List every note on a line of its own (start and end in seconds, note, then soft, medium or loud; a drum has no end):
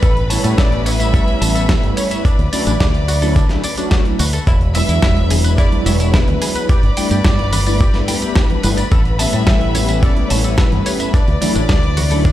0.00 0.37 A1 loud
0.00 0.13 A4 medium
0.00 0.30 B4 loud
0.00 4.46 B4 medium
0.00 4.46 B5 medium
0.00 kick loud
0.00 closed hi-hat medium
0.00 tambourine soft
0.17 closed hi-hat soft
0.30 0.96 G3 medium
0.30 0.96 A3 medium
0.30 0.97 B3 medium
0.30 0.97 C#4 medium
0.30 0.97 E4 medium
0.30 0.58 C#5 medium
0.30 0.41 A5 medium
0.30 open hi-hat loud
0.30 tambourine medium
0.44 0.53 A2 loud
0.44 0.48 A4 medium
0.44 closed hi-hat medium
0.44 tambourine soft
0.58 1.20 A1 loud
0.58 0.62 A4 loud
0.58 0.86 D5 loud
0.58 kick loud
0.58 snare loud
0.58 closed hi-hat medium
0.58 tambourine soft
0.72 closed hi-hat soft
0.86 0.90 C#5 medium
0.86 1.97 E5 loud
0.86 open hi-hat loud
0.86 tambourine medium
0.99 2.23 G3 medium
0.99 2.23 A3 medium
0.99 2.23 B3 medium
0.99 2.24 C#4 medium
0.99 2.24 E4 medium
0.99 1.10 E5 medium
0.99 closed hi-hat medium
0.99 tambourine soft
1.14 1.24 A4 medium
1.14 kick loud
1.14 closed hi-hat medium
1.14 tambourine soft
1.28 closed hi-hat soft
1.42 1.75 A1 loud
1.42 1.52 A5 medium
1.42 open hi-hat loud
1.42 tambourine medium
1.55 1.66 A4 medium
1.55 closed hi-hat medium
1.55 tambourine soft
1.69 1.73 A4 loud
1.69 kick loud
1.69 snare loud
1.69 closed hi-hat medium
1.69 tambourine soft
1.83 1.92 G1 medium
1.83 closed hi-hat soft
1.97 2.01 C#5 medium
1.97 2.23 C#5 medium
1.97 open hi-hat loud
1.97 tambourine medium
2.11 2.22 E5 medium
2.11 closed hi-hat medium
2.11 tambourine soft
2.25 2.35 D4 medium
2.25 3.88 D5 medium
2.25 muted fingered electric bass stroke soft
2.25 kick loud
2.25 closed hi-hat medium
2.25 tambourine soft
2.39 2.48 D2 loud
2.39 closed hi-hat soft
2.52 2.74 F#3 loud
2.52 2.74 A3 medium
2.52 2.74 C#4 medium
2.52 2.74 D4 medium
2.52 2.74 E4 loud
2.52 2.63 D5 medium
2.52 open hi-hat loud
2.52 tambourine medium
2.67 2.76 A1 loud
2.67 2.71 D4 medium
2.67 closed hi-hat medium
2.67 tambourine soft
2.80 3.42 D2 loud
2.80 2.85 D4 loud
2.80 kick loud
2.80 snare loud
2.80 closed hi-hat medium
2.80 tambourine soft
2.95 closed hi-hat soft
3.08 3.12 F#4 medium
3.08 open hi-hat loud
3.08 tambourine medium
3.22 3.35 F#3 loud
3.22 3.35 A3 medium
3.22 3.35 C#4 medium
3.22 3.36 D4 medium
3.22 3.36 E4 loud
3.22 3.33 A4 medium
3.22 open hi-hat medium
3.22 tambourine soft
3.36 3.47 D4 medium
3.36 kick loud
3.36 closed hi-hat medium
3.36 tambourine soft
3.49 3.61 F#3 loud
3.49 3.61 A3 medium
3.49 3.61 C#4 medium
3.49 3.61 D4 medium
3.49 3.61 E4 loud
3.49 snare soft
3.49 closed hi-hat soft
3.64 3.74 D5 medium
3.64 open hi-hat loud
3.64 tambourine medium
3.77 4.02 F#3 medium
3.77 4.02 A3 medium
3.77 4.02 C#4 medium
3.77 3.88 D4 medium
3.77 4.02 D4 medium
3.77 4.02 F#4 loud
3.77 closed hi-hat medium
3.77 tambourine soft
3.91 3.96 D4 loud
3.91 kick loud
3.91 snare loud
3.91 closed hi-hat medium
3.91 tambourine soft
4.05 4.19 F#3 medium
4.05 4.19 A3 medium
4.05 4.19 C#4 medium
4.05 4.19 D4 medium
4.05 4.19 E4 medium
4.05 closed hi-hat soft
4.19 4.37 D2 medium
4.19 4.24 F#4 medium
4.19 open hi-hat loud
4.19 tambourine medium
4.33 4.44 A4 medium
4.33 closed hi-hat medium
4.33 tambourine soft
4.47 4.81 E1 loud
4.47 4.58 E4 medium
4.47 12.32 B4 medium
4.47 12.32 B5 medium
4.47 kick loud
4.47 closed hi-hat medium
4.47 tambourine soft
4.61 closed hi-hat soft
4.74 5.41 F#3 medium
4.74 5.41 G#3 medium
4.74 5.41 B3 medium
4.74 5.41 D4 medium
4.74 5.42 E4 medium
4.74 4.85 E5 medium
4.74 5.54 E5 loud
4.74 open hi-hat loud
4.74 tambourine medium
4.89 4.98 E2 loud
4.89 4.93 E4 medium
4.89 closed hi-hat medium
4.89 tambourine soft
5.02 5.64 E1 loud
5.02 5.07 E4 loud
5.02 kick loud
5.02 snare loud
5.02 closed hi-hat medium
5.02 tambourine soft
5.02 high conga medium
5.17 closed hi-hat soft
5.30 5.35 G#4 medium
5.30 open hi-hat loud
5.30 tambourine medium
5.30 low conga loud
5.44 6.67 F#3 medium
5.44 6.68 G#3 medium
5.44 6.68 B3 medium
5.44 6.68 D4 medium
5.44 6.68 E4 loud
5.44 5.55 B4 medium
5.44 closed hi-hat medium
5.44 tambourine soft
5.58 5.69 E4 medium
5.58 5.84 D5 loud
5.58 kick loud
5.58 closed hi-hat medium
5.58 tambourine soft
5.58 muted conga medium
5.72 closed hi-hat soft
5.72 muted conga medium
5.85 6.20 E1 loud
5.85 6.14 C#5 loud
5.85 5.97 E5 medium
5.85 open hi-hat loud
5.85 tambourine medium
5.85 high conga loud
6.00 6.10 E4 medium
6.00 closed hi-hat medium
6.00 tambourine soft
6.14 6.18 E4 loud
6.14 6.70 B4 loud
6.14 kick loud
6.14 snare loud
6.14 closed hi-hat medium
6.14 tambourine soft
6.28 6.37 D2 medium
6.28 closed hi-hat soft
6.28 low conga medium
6.42 6.46 G#4 medium
6.42 open hi-hat loud
6.42 tambourine medium
6.55 6.66 B4 medium
6.55 closed hi-hat medium
6.55 tambourine soft
6.69 6.80 G4 medium
6.69 8.60 D5 loud
6.69 muted fingered electric bass stroke soft
6.69 kick loud
6.69 closed hi-hat medium
6.69 tambourine soft
6.83 6.92 G1 loud
6.83 closed hi-hat soft
6.97 7.18 G3 loud
6.97 7.18 A3 medium
6.97 7.18 B3 medium
6.97 7.19 D4 medium
6.97 7.19 E4 loud
6.97 7.08 G5 medium
6.97 open hi-hat loud
6.97 tambourine medium
7.11 7.20 G2 loud
7.11 7.15 G4 medium
7.11 closed hi-hat medium
7.11 tambourine soft
7.25 7.87 G1 loud
7.25 7.29 G4 loud
7.25 kick loud
7.25 snare loud
7.25 closed hi-hat medium
7.25 tambourine soft
7.25 high conga loud
7.39 closed hi-hat soft
7.39 muted conga medium
7.52 7.57 B4 medium
7.52 open hi-hat loud
7.52 tambourine medium
7.52 low conga loud
7.66 7.80 G3 loud
7.66 7.80 A3 medium
7.66 7.80 B3 medium
7.66 7.80 D4 medium
7.66 7.80 E4 loud
7.66 7.77 D5 medium
7.66 open hi-hat medium
7.66 tambourine soft
7.66 muted conga medium
7.80 7.91 G4 medium
7.80 kick loud
7.80 closed hi-hat medium
7.80 tambourine soft
7.94 8.05 G3 medium
7.94 8.06 A3 medium
7.94 8.06 B3 medium
7.94 8.06 D4 medium
7.94 8.06 E4 loud
7.94 snare soft
7.94 closed hi-hat soft
8.08 8.47 G3 medium
8.08 8.47 A3 medium
8.08 8.47 B3 medium
8.08 8.47 D4 medium
8.08 8.47 E4 medium
8.08 8.19 G5 medium
8.08 open hi-hat loud
8.08 tambourine medium
8.08 high conga loud
8.22 8.33 G4 medium
8.22 closed hi-hat medium
8.22 tambourine soft
8.36 8.40 G4 loud
8.36 kick loud
8.36 snare loud
8.36 closed hi-hat medium
8.36 tambourine soft
8.50 8.60 G3 medium
8.50 8.60 A3 medium
8.50 8.61 B3 medium
8.50 8.61 D4 medium
8.50 8.61 A4 medium
8.50 closed hi-hat soft
8.50 low conga medium
8.63 8.82 G1 loud
8.63 8.77 G3 loud
8.63 8.77 A3 medium
8.63 8.77 B3 medium
8.63 8.77 D4 medium
8.63 8.77 E4 loud
8.63 8.68 B4 medium
8.63 open hi-hat loud
8.63 tambourine medium
8.63 muted conga medium
8.77 8.88 D5 medium
8.77 closed hi-hat medium
8.77 tambourine soft
8.77 muted conga soft
8.92 9.26 A1 loud
8.92 9.02 A4 medium
8.92 kick loud
8.92 closed hi-hat medium
8.92 tambourine soft
9.05 closed hi-hat soft
9.18 9.85 G3 medium
9.18 9.85 A3 medium
9.18 9.86 B3 medium
9.18 9.86 C#4 medium
9.18 9.86 E4 medium
9.18 9.99 E5 loud
9.18 9.30 A5 medium
9.18 open hi-hat loud
9.18 tambourine medium
9.33 9.42 A2 loud
9.33 9.37 A4 medium
9.33 closed hi-hat medium
9.33 tambourine soft
9.47 10.09 A1 loud
9.47 9.51 A4 loud
9.47 kick loud
9.47 snare loud
9.47 closed hi-hat medium
9.47 tambourine soft
9.47 high conga medium
9.61 closed hi-hat soft
9.75 9.79 C#5 medium
9.75 open hi-hat loud
9.75 tambourine medium
9.75 low conga loud
9.88 11.12 G3 medium
9.88 11.12 A3 medium
9.88 11.12 B3 medium
9.88 11.13 C#4 medium
9.88 11.13 E4 medium
9.88 9.99 E5 medium
9.88 closed hi-hat medium
9.88 tambourine soft
10.03 10.13 A4 medium
10.03 10.31 D5 loud
10.03 kick loud
10.03 closed hi-hat medium
10.03 tambourine soft
10.03 muted conga soft
10.16 closed hi-hat soft
10.16 muted conga medium
10.30 10.64 A1 loud
10.30 10.58 C#5 medium
10.30 10.41 A5 medium
10.30 open hi-hat loud
10.30 tambourine medium
10.30 high conga loud
10.44 10.55 A4 medium
10.44 closed hi-hat medium
10.44 tambourine soft
10.58 10.62 A4 loud
10.58 11.14 B4 medium
10.58 kick loud
10.58 snare loud
10.58 closed hi-hat medium
10.58 tambourine soft
10.72 10.81 G1 medium
10.72 closed hi-hat soft
10.72 low conga medium
10.86 10.90 C#5 medium
10.86 open hi-hat loud
10.86 tambourine medium
11.00 11.10 E5 medium
11.00 closed hi-hat medium
11.00 tambourine soft
11.14 11.24 D4 medium
11.14 12.32 D5 loud
11.14 muted fingered electric bass stroke soft
11.14 kick loud
11.14 closed hi-hat medium
11.14 tambourine soft
11.28 11.37 D2 loud
11.28 closed hi-hat soft
11.41 11.63 F#3 loud
11.41 11.63 A3 medium
11.41 11.63 C#4 loud
11.41 11.63 D4 loud
11.41 11.63 E4 loud
11.41 11.52 D5 medium
11.41 open hi-hat loud
11.41 tambourine medium
11.41 low conga medium
11.55 11.65 A1 loud
11.55 11.60 D4 medium
11.55 closed hi-hat medium
11.55 tambourine soft
11.69 12.31 D2 loud
11.69 11.73 D4 loud
11.69 kick loud
11.69 snare loud
11.69 closed hi-hat medium
11.69 tambourine soft
11.69 high conga loud
11.83 closed hi-hat soft
11.83 muted conga medium
11.97 12.01 F#4 medium
11.97 open hi-hat loud
11.97 tambourine medium
11.97 low conga medium
12.10 12.24 F#3 loud
12.10 12.24 A3 medium
12.10 12.24 C#4 medium
12.10 12.24 D4 medium
12.10 12.25 E4 loud
12.10 12.22 A4 medium
12.10 open hi-hat medium
12.10 tambourine soft
12.10 muted conga medium
12.25 12.32 D4 medium
12.25 kick loud
12.25 closed hi-hat medium
12.25 tambourine soft